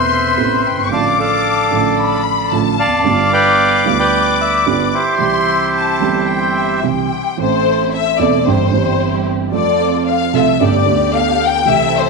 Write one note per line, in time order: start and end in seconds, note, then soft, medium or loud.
0.00 0.33 E1 medium
0.00 0.33 E2 medium
0.00 0.34 B2 medium
0.00 0.32 C3 medium
0.00 0.33 A3 medium
0.00 0.34 E4 medium
0.00 0.88 B4 medium
0.00 0.88 C5 medium
0.00 0.68 E5 medium
0.00 0.80 C6 medium
0.37 0.60 A1 medium
0.37 0.60 A2 medium
0.37 0.60 C3 medium
0.37 0.60 A3 medium
0.37 0.60 B3 medium
0.37 0.60 E4 medium
0.67 0.90 G5 medium
0.71 0.77 F#1 soft
0.78 0.84 G1 medium
0.84 0.91 G#1 medium
0.84 0.91 C#6 medium
0.90 1.68 A1 medium
0.90 1.68 A2 medium
0.90 1.67 D3 medium
0.90 1.68 F3 medium
0.90 1.68 A3 medium
0.90 1.69 F4 medium
0.90 1.18 D5 medium
0.90 1.19 F5 medium
0.90 1.05 A5 medium
0.90 1.98 D6 medium
1.19 2.22 A4 medium
1.19 2.22 D5 medium
1.19 1.96 F5 medium
1.71 2.48 A1 medium
1.71 2.48 A2 medium
1.71 2.47 D3 medium
1.71 2.48 F3 medium
1.71 2.48 A3 medium
1.71 2.49 F4 medium
1.97 2.51 B5 medium
2.51 2.74 A1 medium
2.51 2.74 A2 medium
2.51 2.74 D3 medium
2.51 2.74 F3 medium
2.51 2.75 A3 medium
2.51 2.75 F4 medium
2.51 3.05 A5 medium
2.79 3.32 D5 medium
2.79 3.82 F5 medium
2.79 3.29 A5 medium
2.86 2.92 E2 soft
2.92 2.99 F2 medium
3.00 3.06 F#2 medium
3.04 3.82 G1 medium
3.04 3.82 G2 medium
3.04 3.81 D3 medium
3.04 3.82 G3 medium
3.04 3.83 B3 medium
3.04 3.83 F4 medium
3.04 5.17 D6 medium
3.33 3.98 B4 medium
3.33 3.97 D5 medium
3.33 3.88 G5 loud
3.84 4.63 D2 medium
3.84 3.86 D3 medium
3.84 4.63 D3 medium
3.84 4.63 G3 medium
3.84 4.63 B3 medium
3.84 3.93 F5 medium
3.88 4.64 F4 medium
3.99 5.03 B4 medium
3.99 4.67 D5 medium
3.99 4.41 G5 medium
4.41 4.66 E5 medium
4.66 4.89 G1 medium
4.66 4.89 G2 medium
4.66 4.89 D3 medium
4.66 4.89 G3 medium
4.66 4.89 B3 medium
4.66 4.89 F4 medium
4.66 4.93 D5 medium
4.94 6.80 E4 medium
4.94 6.80 G4 soft
4.94 6.80 C5 medium
5.18 5.97 C2 medium
5.18 5.98 C3 medium
5.18 5.96 E3 medium
5.18 5.97 G3 medium
5.18 5.98 C4 medium
5.18 5.75 C6 medium
5.22 5.98 G4 medium
5.75 6.25 A5 medium
6.00 6.80 G1 medium
6.00 6.80 G2 medium
6.00 6.79 E3 medium
6.00 6.79 G3 medium
6.00 6.80 C4 medium
6.04 6.81 G4 medium
6.30 6.57 G5 medium
6.58 6.84 E5 medium
6.83 7.07 C2 medium
6.83 7.07 C3 medium
6.83 7.06 E3 medium
6.83 7.07 G3 medium
6.83 7.07 C4 medium
6.83 7.07 G4 medium
6.83 7.39 G5 medium
7.37 8.16 A1 medium
7.37 8.16 A2 medium
7.37 8.15 E3 medium
7.37 8.16 A3 medium
7.37 8.16 C4 medium
7.37 8.16 E4 medium
7.37 8.16 A4 medium
7.37 8.17 A4 medium
7.37 7.90 C5 medium
7.94 8.18 E5 medium
8.19 8.42 E1 medium
8.19 8.42 E2 medium
8.19 8.42 E3 medium
8.19 8.42 A3 medium
8.19 8.42 C4 medium
8.19 8.42 E4 medium
8.19 8.43 A4 medium
8.19 8.47 D5 medium
8.46 8.69 G1 medium
8.46 8.69 G2 medium
8.46 8.69 E3 medium
8.46 8.69 G3 medium
8.46 8.69 C4 medium
8.46 8.69 E4 medium
8.46 8.69 G4 medium
8.46 9.27 C5 medium
8.72 9.50 G1 medium
8.72 8.73 G2 medium
8.72 9.50 G2 medium
8.72 9.49 E3 medium
8.72 9.49 G3 medium
8.72 9.50 G3 medium
8.72 9.49 C4 medium
8.72 9.50 C4 medium
8.72 9.49 E4 medium
8.72 9.50 G4 medium
8.76 9.51 G4 medium
9.51 10.29 F2 medium
9.51 9.52 F3 medium
9.51 10.30 F3 medium
9.51 10.29 A3 medium
9.51 10.29 C4 medium
9.51 10.30 C4 medium
9.51 10.30 F4 medium
9.51 10.30 A4 medium
9.51 10.03 D5 medium
10.09 10.33 F5 medium
10.33 10.56 C2 medium
10.33 10.56 C3 medium
10.33 10.56 F3 medium
10.33 10.56 A3 medium
10.33 10.56 C4 medium
10.33 10.56 F4 medium
10.33 10.56 A4 medium
10.33 10.61 E5 medium
10.61 10.83 G1 medium
10.61 10.83 G2 medium
10.61 10.83 D3 medium
10.61 10.83 A3 medium
10.61 10.83 B3 medium
10.61 10.83 G4 medium
10.61 10.83 A4 medium
10.61 11.15 D5 medium
10.85 11.63 D2 medium
10.85 11.63 D3 medium
10.85 11.63 A3 medium
10.85 11.64 B3 medium
10.85 11.64 G4 medium
10.85 11.64 A4 medium
11.16 11.42 F5 medium
11.44 11.69 G5 medium
11.65 12.10 C2 medium
11.65 12.10 C3 medium
11.65 12.10 E3 medium
11.65 12.10 A3 medium
11.65 12.10 C4 medium
11.65 12.10 E4 medium
11.65 12.10 A4 medium
11.69 12.10 G4 medium
11.69 11.96 E5 medium
11.98 12.10 C5 medium